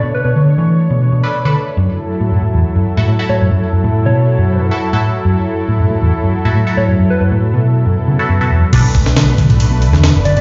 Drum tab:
CC |----------------|----------------|----------------|----------------|
RD |----------------|----------------|----------------|----------------|
SD |----------------|----------------|----------------|----------------|
BD |----------------|----------------|----------------|----------------|

CC |----------------|x---------------|
RD |----------------|x-x-x-xxx-x-x-xx|
SD |----------------|---oo------oo---|
BD |----------------|o-o---o---------|